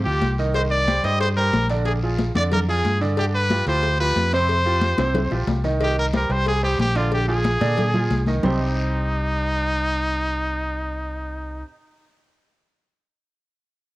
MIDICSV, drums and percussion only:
0, 0, Header, 1, 2, 480
1, 0, Start_track
1, 0, Key_signature, -3, "minor"
1, 0, Tempo, 328947
1, 800, Time_signature, 4, 2, 24, 8
1, 20359, End_track
2, 0, Start_track
2, 0, Title_t, "Drums"
2, 83, Note_on_c, 9, 63, 34
2, 229, Note_off_c, 9, 63, 0
2, 317, Note_on_c, 9, 73, 71
2, 318, Note_on_c, 9, 56, 73
2, 318, Note_on_c, 9, 63, 87
2, 463, Note_off_c, 9, 73, 0
2, 464, Note_off_c, 9, 56, 0
2, 464, Note_off_c, 9, 63, 0
2, 560, Note_on_c, 9, 73, 77
2, 706, Note_off_c, 9, 73, 0
2, 794, Note_on_c, 9, 56, 105
2, 796, Note_on_c, 9, 74, 76
2, 803, Note_on_c, 9, 63, 36
2, 940, Note_off_c, 9, 56, 0
2, 942, Note_off_c, 9, 74, 0
2, 949, Note_off_c, 9, 63, 0
2, 1049, Note_on_c, 9, 63, 36
2, 1195, Note_off_c, 9, 63, 0
2, 1283, Note_on_c, 9, 73, 76
2, 1284, Note_on_c, 9, 63, 96
2, 1285, Note_on_c, 9, 56, 71
2, 1429, Note_off_c, 9, 73, 0
2, 1430, Note_off_c, 9, 63, 0
2, 1431, Note_off_c, 9, 56, 0
2, 1518, Note_on_c, 9, 56, 69
2, 1520, Note_on_c, 9, 73, 78
2, 1525, Note_on_c, 9, 63, 36
2, 1664, Note_off_c, 9, 56, 0
2, 1666, Note_off_c, 9, 73, 0
2, 1671, Note_off_c, 9, 63, 0
2, 1757, Note_on_c, 9, 74, 73
2, 1759, Note_on_c, 9, 63, 36
2, 1760, Note_on_c, 9, 56, 102
2, 1903, Note_off_c, 9, 74, 0
2, 1905, Note_off_c, 9, 56, 0
2, 1905, Note_off_c, 9, 63, 0
2, 1999, Note_on_c, 9, 63, 38
2, 2145, Note_off_c, 9, 63, 0
2, 2235, Note_on_c, 9, 73, 73
2, 2237, Note_on_c, 9, 56, 70
2, 2238, Note_on_c, 9, 63, 94
2, 2381, Note_off_c, 9, 73, 0
2, 2383, Note_off_c, 9, 56, 0
2, 2384, Note_off_c, 9, 63, 0
2, 2472, Note_on_c, 9, 56, 67
2, 2475, Note_on_c, 9, 73, 74
2, 2618, Note_off_c, 9, 56, 0
2, 2621, Note_off_c, 9, 73, 0
2, 2705, Note_on_c, 9, 56, 103
2, 2714, Note_on_c, 9, 63, 34
2, 2717, Note_on_c, 9, 74, 75
2, 2851, Note_off_c, 9, 56, 0
2, 2860, Note_off_c, 9, 63, 0
2, 2863, Note_off_c, 9, 74, 0
2, 2954, Note_on_c, 9, 63, 34
2, 3100, Note_off_c, 9, 63, 0
2, 3188, Note_on_c, 9, 56, 70
2, 3193, Note_on_c, 9, 63, 94
2, 3195, Note_on_c, 9, 73, 77
2, 3334, Note_off_c, 9, 56, 0
2, 3339, Note_off_c, 9, 63, 0
2, 3341, Note_off_c, 9, 73, 0
2, 3433, Note_on_c, 9, 56, 68
2, 3433, Note_on_c, 9, 73, 77
2, 3435, Note_on_c, 9, 63, 91
2, 3579, Note_off_c, 9, 56, 0
2, 3579, Note_off_c, 9, 73, 0
2, 3580, Note_off_c, 9, 63, 0
2, 3670, Note_on_c, 9, 56, 98
2, 3674, Note_on_c, 9, 74, 66
2, 3682, Note_on_c, 9, 63, 37
2, 3682, Note_on_c, 9, 64, 86
2, 3816, Note_off_c, 9, 56, 0
2, 3820, Note_off_c, 9, 74, 0
2, 3828, Note_off_c, 9, 63, 0
2, 3828, Note_off_c, 9, 64, 0
2, 3921, Note_on_c, 9, 63, 35
2, 4067, Note_off_c, 9, 63, 0
2, 4152, Note_on_c, 9, 73, 73
2, 4154, Note_on_c, 9, 56, 70
2, 4159, Note_on_c, 9, 63, 94
2, 4297, Note_off_c, 9, 73, 0
2, 4300, Note_off_c, 9, 56, 0
2, 4305, Note_off_c, 9, 63, 0
2, 4391, Note_on_c, 9, 73, 74
2, 4537, Note_off_c, 9, 73, 0
2, 4625, Note_on_c, 9, 74, 76
2, 4627, Note_on_c, 9, 56, 106
2, 4637, Note_on_c, 9, 63, 35
2, 4771, Note_off_c, 9, 74, 0
2, 4773, Note_off_c, 9, 56, 0
2, 4783, Note_off_c, 9, 63, 0
2, 4872, Note_on_c, 9, 63, 34
2, 5018, Note_off_c, 9, 63, 0
2, 5111, Note_on_c, 9, 63, 93
2, 5112, Note_on_c, 9, 73, 73
2, 5113, Note_on_c, 9, 56, 71
2, 5257, Note_off_c, 9, 63, 0
2, 5258, Note_off_c, 9, 73, 0
2, 5259, Note_off_c, 9, 56, 0
2, 5345, Note_on_c, 9, 73, 73
2, 5348, Note_on_c, 9, 56, 73
2, 5352, Note_on_c, 9, 63, 34
2, 5491, Note_off_c, 9, 73, 0
2, 5494, Note_off_c, 9, 56, 0
2, 5498, Note_off_c, 9, 63, 0
2, 5587, Note_on_c, 9, 56, 99
2, 5589, Note_on_c, 9, 63, 40
2, 5593, Note_on_c, 9, 74, 74
2, 5732, Note_off_c, 9, 56, 0
2, 5735, Note_off_c, 9, 63, 0
2, 5739, Note_off_c, 9, 74, 0
2, 5833, Note_on_c, 9, 63, 37
2, 5978, Note_off_c, 9, 63, 0
2, 6066, Note_on_c, 9, 56, 73
2, 6070, Note_on_c, 9, 73, 74
2, 6073, Note_on_c, 9, 63, 88
2, 6212, Note_off_c, 9, 56, 0
2, 6216, Note_off_c, 9, 73, 0
2, 6219, Note_off_c, 9, 63, 0
2, 6307, Note_on_c, 9, 73, 72
2, 6308, Note_on_c, 9, 56, 71
2, 6314, Note_on_c, 9, 63, 34
2, 6453, Note_off_c, 9, 73, 0
2, 6454, Note_off_c, 9, 56, 0
2, 6460, Note_off_c, 9, 63, 0
2, 6537, Note_on_c, 9, 74, 71
2, 6548, Note_on_c, 9, 63, 37
2, 6552, Note_on_c, 9, 56, 104
2, 6683, Note_off_c, 9, 74, 0
2, 6694, Note_off_c, 9, 63, 0
2, 6698, Note_off_c, 9, 56, 0
2, 6793, Note_on_c, 9, 63, 37
2, 6939, Note_off_c, 9, 63, 0
2, 7020, Note_on_c, 9, 73, 77
2, 7022, Note_on_c, 9, 63, 99
2, 7026, Note_on_c, 9, 56, 71
2, 7166, Note_off_c, 9, 73, 0
2, 7168, Note_off_c, 9, 63, 0
2, 7172, Note_off_c, 9, 56, 0
2, 7264, Note_on_c, 9, 63, 98
2, 7267, Note_on_c, 9, 73, 75
2, 7269, Note_on_c, 9, 56, 70
2, 7269, Note_on_c, 9, 60, 90
2, 7410, Note_off_c, 9, 63, 0
2, 7413, Note_off_c, 9, 73, 0
2, 7415, Note_off_c, 9, 56, 0
2, 7415, Note_off_c, 9, 60, 0
2, 7503, Note_on_c, 9, 74, 72
2, 7504, Note_on_c, 9, 63, 37
2, 7504, Note_on_c, 9, 64, 91
2, 7510, Note_on_c, 9, 56, 98
2, 7510, Note_on_c, 9, 60, 82
2, 7649, Note_off_c, 9, 74, 0
2, 7650, Note_off_c, 9, 63, 0
2, 7650, Note_off_c, 9, 64, 0
2, 7656, Note_off_c, 9, 56, 0
2, 7656, Note_off_c, 9, 60, 0
2, 7745, Note_on_c, 9, 63, 37
2, 7746, Note_on_c, 9, 61, 73
2, 7890, Note_off_c, 9, 63, 0
2, 7892, Note_off_c, 9, 61, 0
2, 7986, Note_on_c, 9, 56, 69
2, 7986, Note_on_c, 9, 61, 92
2, 7987, Note_on_c, 9, 63, 86
2, 7987, Note_on_c, 9, 73, 71
2, 8132, Note_off_c, 9, 56, 0
2, 8132, Note_off_c, 9, 61, 0
2, 8132, Note_off_c, 9, 63, 0
2, 8132, Note_off_c, 9, 73, 0
2, 8230, Note_on_c, 9, 73, 71
2, 8231, Note_on_c, 9, 61, 74
2, 8376, Note_off_c, 9, 73, 0
2, 8377, Note_off_c, 9, 61, 0
2, 8470, Note_on_c, 9, 74, 74
2, 8472, Note_on_c, 9, 56, 113
2, 8472, Note_on_c, 9, 63, 37
2, 8616, Note_off_c, 9, 74, 0
2, 8617, Note_off_c, 9, 63, 0
2, 8618, Note_off_c, 9, 56, 0
2, 8716, Note_on_c, 9, 63, 35
2, 8862, Note_off_c, 9, 63, 0
2, 8949, Note_on_c, 9, 56, 68
2, 8951, Note_on_c, 9, 73, 74
2, 8953, Note_on_c, 9, 63, 97
2, 9095, Note_off_c, 9, 56, 0
2, 9097, Note_off_c, 9, 73, 0
2, 9099, Note_off_c, 9, 63, 0
2, 9190, Note_on_c, 9, 56, 71
2, 9190, Note_on_c, 9, 73, 78
2, 9192, Note_on_c, 9, 63, 35
2, 9336, Note_off_c, 9, 56, 0
2, 9336, Note_off_c, 9, 73, 0
2, 9338, Note_off_c, 9, 63, 0
2, 9431, Note_on_c, 9, 56, 107
2, 9435, Note_on_c, 9, 74, 76
2, 9439, Note_on_c, 9, 63, 37
2, 9576, Note_off_c, 9, 56, 0
2, 9581, Note_off_c, 9, 74, 0
2, 9585, Note_off_c, 9, 63, 0
2, 9674, Note_on_c, 9, 63, 35
2, 9820, Note_off_c, 9, 63, 0
2, 9914, Note_on_c, 9, 56, 75
2, 9916, Note_on_c, 9, 73, 76
2, 9921, Note_on_c, 9, 63, 94
2, 10060, Note_off_c, 9, 56, 0
2, 10062, Note_off_c, 9, 73, 0
2, 10067, Note_off_c, 9, 63, 0
2, 10147, Note_on_c, 9, 56, 73
2, 10151, Note_on_c, 9, 73, 75
2, 10154, Note_on_c, 9, 63, 38
2, 10293, Note_off_c, 9, 56, 0
2, 10297, Note_off_c, 9, 73, 0
2, 10300, Note_off_c, 9, 63, 0
2, 10388, Note_on_c, 9, 56, 107
2, 10393, Note_on_c, 9, 74, 77
2, 10398, Note_on_c, 9, 63, 35
2, 10534, Note_off_c, 9, 56, 0
2, 10539, Note_off_c, 9, 74, 0
2, 10544, Note_off_c, 9, 63, 0
2, 10627, Note_on_c, 9, 63, 35
2, 10773, Note_off_c, 9, 63, 0
2, 10861, Note_on_c, 9, 56, 70
2, 10869, Note_on_c, 9, 63, 98
2, 10876, Note_on_c, 9, 73, 76
2, 11007, Note_off_c, 9, 56, 0
2, 11015, Note_off_c, 9, 63, 0
2, 11022, Note_off_c, 9, 73, 0
2, 11107, Note_on_c, 9, 56, 70
2, 11111, Note_on_c, 9, 63, 99
2, 11119, Note_on_c, 9, 73, 76
2, 11253, Note_off_c, 9, 56, 0
2, 11256, Note_off_c, 9, 63, 0
2, 11265, Note_off_c, 9, 73, 0
2, 11346, Note_on_c, 9, 56, 100
2, 11355, Note_on_c, 9, 63, 38
2, 11355, Note_on_c, 9, 64, 86
2, 11357, Note_on_c, 9, 74, 69
2, 11492, Note_off_c, 9, 56, 0
2, 11501, Note_off_c, 9, 63, 0
2, 11501, Note_off_c, 9, 64, 0
2, 11503, Note_off_c, 9, 74, 0
2, 11587, Note_on_c, 9, 63, 36
2, 11587, Note_on_c, 9, 64, 75
2, 11733, Note_off_c, 9, 63, 0
2, 11733, Note_off_c, 9, 64, 0
2, 11830, Note_on_c, 9, 56, 72
2, 11830, Note_on_c, 9, 63, 96
2, 11833, Note_on_c, 9, 73, 74
2, 11976, Note_off_c, 9, 56, 0
2, 11976, Note_off_c, 9, 63, 0
2, 11978, Note_off_c, 9, 73, 0
2, 12061, Note_on_c, 9, 63, 75
2, 12074, Note_on_c, 9, 73, 75
2, 12207, Note_off_c, 9, 63, 0
2, 12220, Note_off_c, 9, 73, 0
2, 12305, Note_on_c, 9, 61, 99
2, 12310, Note_on_c, 9, 64, 100
2, 12313, Note_on_c, 9, 74, 109
2, 12451, Note_off_c, 9, 61, 0
2, 12456, Note_off_c, 9, 64, 0
2, 12459, Note_off_c, 9, 74, 0
2, 20359, End_track
0, 0, End_of_file